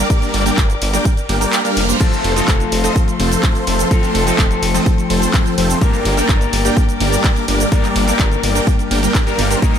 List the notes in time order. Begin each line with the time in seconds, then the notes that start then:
Already playing: A#4 D5 G5 D6
0.10 G3 A#3 D4 A#4, kick, closed hi-hat, cabasa
0.22 closed hi-hat, cabasa
0.34 G1, open hi-hat, ride
0.46 G3 A#3 D4 A#4 G5, closed hi-hat, cabasa
0.58 G1, kick, clap, closed hi-hat, cabasa
0.70 closed hi-hat, cabasa
0.82 G1, open hi-hat, ride
0.93 G3 A#3 D4 A#4 G5, closed hi-hat, cabasa
1.05 kick, closed hi-hat, reverse cymbal, cabasa
1.17 closed hi-hat, cabasa
1.29 G1 G3 A#3 D4 A#4 G5, open hi-hat, ride
1.41 G3 A#3 D4 A#4 G5, closed hi-hat, cabasa
1.53 clap, closed hi-hat, cabasa
1.65 G3 A#3 D4 A#4 F5, closed hi-hat, cabasa
1.77 F1, open hi-hat, ride
1.89 G3 A#3 D4 A#4 C5, closed hi-hat, cabasa
2.00 F3 A3 C4 A4 C5 F5 C6, kick, closed hi-hat, crash, cabasa
2.13 closed hi-hat, cabasa
2.24 F1, open hi-hat, ride
2.35 F3 A3 C4 A4 D#5, closed hi-hat, cabasa
2.48 F1, kick, clap, closed hi-hat, cabasa
2.60 closed hi-hat, cabasa
2.72 F1, open hi-hat, ride
2.84 F3 A3 C4 A4 D#5, closed hi-hat, cabasa
2.96 kick, closed hi-hat, cabasa
3.08 closed hi-hat, cabasa
3.20 F1 F3 A3 C4 A4 C5, open hi-hat, ride
3.32 closed hi-hat, cabasa
3.43 kick, clap, closed hi-hat, cabasa
3.55 closed hi-hat, cabasa
3.67 F1 F3 A3 C4 A4 C5, open hi-hat, ride
3.79 closed hi-hat, cabasa
3.91 F3 A3 C4 A4 C5 G5, kick, closed hi-hat, cabasa
4.03 closed hi-hat, cabasa
4.15 F1, open hi-hat, ride
4.26 F3 A3 C4 A4 D#5, closed hi-hat, cabasa
4.39 F1, kick, clap, closed hi-hat, cabasa
4.51 closed hi-hat, cabasa
4.62 F1, open hi-hat, ride
4.74 F3 A3 C4 A4 D#5, closed hi-hat, cabasa
4.86 kick, closed hi-hat, cabasa
4.98 closed hi-hat, cabasa
5.10 F1 F3 A3 C4 A4 C5, open hi-hat, ride
5.22 closed hi-hat, cabasa
5.34 kick, clap, closed hi-hat, cabasa
5.46 closed hi-hat, cabasa
5.58 F1 F3 A3 C4 A4 C5, open hi-hat, ride
5.70 closed hi-hat, cabasa
5.81 G2 G3 A#3 D4 A#4 D5 D6, kick, closed hi-hat, cabasa
5.94 closed hi-hat, cabasa
6.05 G1, open hi-hat, ride
6.16 G2 G3 A#3 D4 A#4 G5, closed hi-hat, cabasa
6.29 G1, kick, clap, closed hi-hat, cabasa
6.41 closed hi-hat, cabasa
6.53 G1, open hi-hat, ride
6.65 G3 A#3 D4 A#4 G5, closed hi-hat, cabasa
6.77 kick, closed hi-hat, cabasa
6.89 closed hi-hat, cabasa
7.00 G1 G3 A#3 D4 A#4 D5, open hi-hat, ride
7.12 closed hi-hat, cabasa
7.24 kick, clap, closed hi-hat, cabasa
7.36 closed hi-hat, cabasa
7.48 G1 G3 A#3 D4 A#4 D5, open hi-hat, ride
7.60 closed hi-hat, cabasa
7.71 G2 G3 A#3 D4 A#4 D5, kick, closed hi-hat, cabasa
7.84 clap, closed hi-hat, cabasa
7.96 G1, open hi-hat, ride
8.06 G2 G3 A#3 D4 A#4 G5, closed hi-hat, cabasa
8.19 G1, kick, clap, closed hi-hat, cabasa
8.32 closed hi-hat, cabasa
8.43 G1, open hi-hat, ride
8.55 G3 A#3 D4 A#4 G5, closed hi-hat, cabasa
8.67 kick, closed hi-hat, cabasa
8.79 closed hi-hat, cabasa
8.91 G1 G3 A#3 D4 A#4 G5, open hi-hat, ride
9.03 G3 A#3 D4 A#4 G5, closed hi-hat, cabasa
9.15 kick, clap, closed hi-hat, cabasa
9.26 G2 G3 A#3 D4 A#4 F5, closed hi-hat, cabasa
9.38 G1 G3 A#3 D4 D5, open hi-hat, ride
9.50 G3 A#3 D4 A#4 C5, closed hi-hat, cabasa
9.62 G3 A#3 D#4 A#4 D#5 G5 D#6, kick, closed hi-hat, cabasa
9.74 closed hi-hat, cabasa